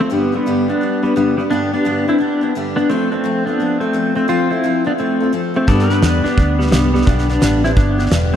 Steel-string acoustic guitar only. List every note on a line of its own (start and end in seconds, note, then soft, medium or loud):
0.00 0.11 C4 medium
0.00 0.11 F4 medium
0.00 0.10 A4 medium
0.10 0.33 G2 medium
0.10 0.33 D3 medium
0.10 0.33 G3 medium
0.10 0.32 B3 medium
0.10 0.32 D4 medium
0.10 0.31 G4 medium
0.32 0.46 G3 soft
0.32 0.46 B3 soft
0.32 0.46 D4 soft
0.32 0.45 G4 medium
0.46 0.68 G2 medium
0.46 0.69 D3 medium
0.46 0.69 G3 medium
0.46 0.69 B3 medium
0.46 0.68 D4 medium
0.46 0.67 G4 loud
0.68 0.80 G3 medium
0.68 0.81 B3 medium
0.68 0.82 D4 medium
0.68 0.81 G4 medium
0.81 1.03 G3 medium
0.81 1.04 B3 medium
0.81 1.02 D4 medium
0.81 1.01 G4 medium
1.02 1.16 G3 soft
1.02 1.16 B3 soft
1.02 1.16 D4 soft
1.02 1.16 G4 soft
1.16 1.38 G2 medium
1.16 1.38 D3 medium
1.16 1.39 G3 medium
1.16 1.39 B3 medium
1.16 1.38 D4 medium
1.16 1.37 G4 medium
1.39 1.51 G3 soft
1.39 1.51 B3 soft
1.39 1.51 D4 medium
1.39 1.51 G4 medium
1.50 1.73 G2 medium
1.50 1.73 D3 medium
1.50 1.73 G3 medium
1.50 1.74 B3 medium
1.50 1.73 D4 medium
1.50 1.72 G4 medium
1.73 1.84 G3 soft
1.73 1.85 B3 soft
1.73 1.85 D4 soft
1.73 1.85 G4 medium
1.84 2.07 G2 medium
1.84 2.07 D3 medium
1.84 2.07 G3 medium
1.84 2.08 B3 medium
1.84 2.07 D4 medium
1.84 2.07 G4 loud
2.08 2.17 G3 soft
2.08 2.19 B3 medium
2.08 2.19 D4 medium
2.08 2.20 G4 medium
2.18 2.42 G3 medium
2.18 2.42 B3 medium
2.18 2.41 D4 medium
2.18 2.40 G4 medium
2.41 2.55 G3 soft
2.41 2.55 B3 soft
2.41 2.55 D4 medium
2.41 2.54 G4 medium
2.55 2.77 G2 medium
2.55 2.78 D3 medium
2.55 2.78 G3 medium
2.55 2.78 B3 medium
2.55 2.77 D4 medium
2.55 2.76 G4 loud
2.77 2.89 G3 soft
2.77 2.91 B3 medium
2.77 2.90 D4 medium
2.77 2.90 G4 medium
2.90 3.12 F3 medium
2.90 3.13 C4 medium
2.90 3.12 F4 medium
2.90 3.11 A4 medium
3.12 3.24 C4 soft
3.12 3.24 F4 soft
3.12 3.24 A4 medium
3.24 3.46 F3 medium
3.24 3.47 C4 medium
3.24 3.47 F4 medium
3.24 3.46 A4 medium
3.47 3.59 C4 soft
3.47 3.60 F4 medium
3.47 3.60 A4 medium
3.59 3.82 F3 medium
3.59 3.82 C4 medium
3.59 3.81 F4 medium
3.59 3.80 A4 medium
3.81 3.93 C4 soft
3.81 3.93 F4 soft
3.81 3.94 A4 medium
3.93 4.16 F3 medium
3.93 4.16 C4 medium
3.93 4.15 F4 medium
3.93 4.14 A4 medium
4.15 4.28 C4 medium
4.15 4.29 F4 medium
4.15 4.28 A4 medium
4.28 4.51 F3 medium
4.28 4.51 C4 medium
4.28 4.51 F4 medium
4.28 4.49 A4 medium
4.50 4.63 C4 soft
4.50 4.63 F4 soft
4.50 4.63 A4 soft
4.63 4.86 F3 medium
4.63 4.86 C4 medium
4.63 4.85 F4 medium
4.63 4.83 A4 medium
4.85 4.98 C4 soft
4.85 4.98 F4 medium
4.85 4.98 A4 medium
4.98 5.21 F3 medium
4.98 5.21 C4 medium
4.98 5.20 F4 medium
4.98 5.19 A4 medium
5.20 5.32 C4 soft
5.20 5.32 F4 soft
5.20 5.33 A4 medium
5.32 5.55 F3 medium
5.32 5.55 C4 medium
5.32 5.55 F4 medium
5.32 5.53 A4 medium
5.54 5.69 C4 soft
5.54 5.68 F4 medium
5.54 5.67 A4 medium
5.67 5.90 G2 medium
5.67 5.90 D3 medium
5.67 5.91 G3 medium
5.67 5.91 B3 medium
5.67 5.90 D4 medium
5.67 5.89 G4 medium
5.90 6.02 G3 soft
5.90 6.02 B3 soft
5.90 6.02 D4 soft
5.90 6.02 G4 medium
6.02 6.25 G2 medium
6.02 6.25 D3 medium
6.02 6.25 G3 medium
6.02 6.25 B3 medium
6.02 6.24 D4 medium
6.02 6.23 G4 medium
6.24 6.36 G3 soft
6.24 6.37 B3 soft
6.24 6.38 D4 medium
6.24 6.37 G4 medium
6.37 6.60 G3 medium
6.37 6.60 B3 medium
6.37 6.60 D4 medium
6.37 6.59 G4 medium
6.60 6.72 G3 soft
6.60 6.72 B3 soft
6.60 6.72 D4 soft
6.60 6.73 G4 medium
6.72 6.94 G2 medium
6.72 6.95 D3 medium
6.72 6.95 G3 medium
6.72 6.95 B3 medium
6.72 6.95 D4 medium
6.72 6.94 G4 medium
6.96 7.07 G3 soft
6.96 7.08 B3 medium
6.96 7.08 D4 medium
6.96 7.08 G4 medium
7.08 7.30 G2 medium
7.08 7.30 D3 medium
7.08 7.30 G3 medium
7.08 7.31 B3 medium
7.08 7.29 D4 medium
7.08 7.29 G4 medium
7.30 7.40 G3 soft
7.30 7.41 B3 soft
7.30 7.41 D4 medium
7.30 7.41 G4 medium
7.41 7.64 G2 medium
7.41 7.64 D3 medium
7.41 7.64 G3 medium
7.41 7.63 B3 medium
7.41 7.63 D4 medium
7.41 7.62 G4 medium
7.63 7.75 G3 soft
7.63 7.75 B3 soft
7.63 7.76 D4 medium
7.63 7.76 G4 medium
7.76 7.99 G3 medium
7.76 7.99 B3 medium
7.76 7.98 D4 medium
7.76 7.97 G4 medium
7.98 8.11 G3 medium
7.98 8.12 B3 medium
7.98 8.12 D4 medium
7.98 8.11 G4 medium
8.12 8.34 G2 medium
8.12 8.34 D3 medium
8.12 8.34 G3 medium
8.12 8.35 B3 medium
8.12 8.33 D4 medium
8.12 8.32 G4 loud